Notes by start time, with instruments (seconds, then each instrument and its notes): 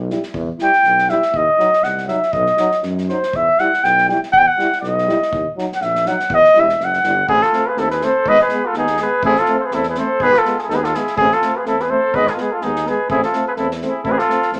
Already playing: tuba B1
0.09 euphonium G3, french horn E4, snare
0.23 snare
0.34 tuba E2, kick
0.59 euphonium G3, french horn E4, snare
0.63 flugelhorn G5
0.73 snare
0.84 tuba B1, snare
0.98 snare
1.09 euphonium G3, french horn E4, flugelhorn E5, snare
1.22 snare
1.33 tuba D#2, flugelhorn D#5, kick
1.59 euphonium F#3, french horn D#4, snare
1.73 snare
1.83 tuba C2, flugelhorn F#5, snare
1.98 snare
2.07 euphonium F#3, french horn D#4, flugelhorn E5, snare
2.23 snare
2.32 tuba B1, flugelhorn D#5, kick
2.46 snare
2.57 euphonium F#3, french horn D#4, snare
2.71 snare
2.83 tuba F#2, snare
2.98 snare
3.08 euphonium F#3, french horn D#4, flugelhorn C5, snare
3.23 snare
3.33 tuba E2, flugelhorn E5, kick
3.58 euphonium G3, french horn E4, flugelhorn F#5, snare
3.73 snare
3.84 tuba B1, flugelhorn G5, snare
3.98 snare
4.07 euphonium G3, french horn E4, flugelhorn G5, snare
4.23 snare
4.33 tuba E2, flugelhorn F#5, kick
4.38 flugelhorn G5
4.47 flugelhorn F#5
4.58 euphonium G3, french horn E4, snare
4.72 snare
4.81 tuba B1, flugelhorn D#5, snare
4.98 snare
5.07 euphonium G3, french horn E4, snare
5.22 snare
5.31 tuba D#2, kick
5.56 euphonium F#3, french horn D#4, snare
5.72 flugelhorn F#5, snare
5.80 tuba A#1, flugelhorn E5, snare
5.95 snare
6.06 euphonium F#3, french horn D#4, flugelhorn F#5, snare
6.20 snare
6.29 tuba E2, kick
6.34 flugelhorn D#5
6.44 snare
6.54 tuba E1, euphonium G3, french horn E4, snare
6.59 flugelhorn E5
6.69 snare
6.78 tuba F#1, snare
6.84 flugelhorn F#5
6.93 snare
7.03 tuba G1, euphonium G3, french horn E4, snare
7.28 tuba A1, euphonium A3, french horn C4, trumpet E4, flugelhorn G#4, kick
7.42 trumpet F4, flugelhorn A4, snare
7.52 euphonium A3, french horn C4, snare
7.67 trumpet G#4, flugelhorn B4
7.76 tuba D#2, euphonium A3, french horn C4, trumpet E4, flugelhorn A4, snare
7.90 trumpet G#4, flugelhorn B4, snare
8.01 euphonium A3, french horn C4, trumpet A4, flugelhorn C5, snare
8.24 tuba G#1, euphonium G#3, french horn B3, trumpet B4, flugelhorn D#5, kick
8.39 trumpet G#4, flugelhorn B4, snare
8.49 euphonium G#3, french horn B3, snare
8.65 trumpet F4, flugelhorn A4
8.74 tuba D#2, euphonium G#3, french horn B3, trumpet D#4, snare
8.78 flugelhorn G#4
8.87 snare
8.97 euphonium G#3, french horn B3, trumpet G#4, snare
9.02 flugelhorn B4
9.23 tuba A1, euphonium A3, french horn C4, trumpet E4, flugelhorn G#4, kick
9.36 flugelhorn A4, snare
9.40 trumpet F4
9.45 euphonium A3, french horn C4, snare
9.58 trumpet A4, flugelhorn C5
9.65 trumpet G#4, flugelhorn B4
9.71 tuba E2, euphonium A3, french horn C4, trumpet E4, flugelhorn A4, snare
9.83 snare
9.88 trumpet G#4, flugelhorn B4
9.95 euphonium A3, french horn C4, trumpet A4, flugelhorn C5, snare
10.20 tuba G#1, euphonium G#3, french horn B3, trumpet G#4, flugelhorn B4, kick
10.34 trumpet F4, snare
10.38 flugelhorn A4
10.45 euphonium G#3, french horn B3, snare
10.58 trumpet F4, flugelhorn G#4 A4, snare
10.62 trumpet E4, flugelhorn G#4
10.68 tuba D#2, euphonium G#3, french horn B3, trumpet D#4, flugelhorn A4, snare
10.75 trumpet G#4, flugelhorn B4
10.83 trumpet F4, flugelhorn A4, snare
10.94 euphonium G#3, french horn B3, trumpet E4, flugelhorn G#4, snare
11.07 snare
11.16 tuba A1, euphonium A3, french horn C4, trumpet E4, flugelhorn G#4, kick
11.31 trumpet F4, flugelhorn A4, snare
11.42 euphonium A3, french horn C4, snare
11.56 trumpet G#4, flugelhorn B4
11.65 tuba E2, euphonium A3, french horn C4, trumpet E4, flugelhorn A4, snare
11.80 trumpet G#4, flugelhorn B4, snare
11.88 euphonium A3, french horn C4, trumpet A4, flugelhorn C5
12.13 tuba G#1, euphonium G#3, french horn B3, trumpet B4, flugelhorn D#5, kick
12.27 trumpet G#4, flugelhorn B4, snare
12.32 trumpet F4, flugelhorn A4
12.37 euphonium G#3, french horn B3, trumpet G#4, flugelhorn B4, snare
12.52 trumpet F4, flugelhorn A4
12.61 tuba D#2, euphonium G#3, french horn B3, trumpet D#4, flugelhorn G#4, snare
12.76 snare
12.85 euphonium G#3, french horn B3, trumpet G#4, flugelhorn B4, snare
13.10 tuba A1, euphonium A3, french horn C4, trumpet E4, flugelhorn G#4, kick
13.23 trumpet F4, flugelhorn A4, snare
13.33 euphonium A3, french horn C4, snare
13.47 trumpet G#4, flugelhorn B4
13.56 tuba E2, euphonium A3, french horn C4, trumpet E4, flugelhorn A4, snare
13.71 snare
13.82 euphonium A3, french horn C4, snare
13.88 trumpet E4, flugelhorn G#4
14.04 tuba A1, euphonium A3, french horn C4, trumpet E4, flugelhorn A4, kick
14.10 trumpet G#4, flugelhorn B4
14.18 trumpet F4, flugelhorn A4, snare
14.29 euphonium A3, french horn C4, snare
14.42 snare
14.52 tuba E2, euphonium A3, french horn C4, snare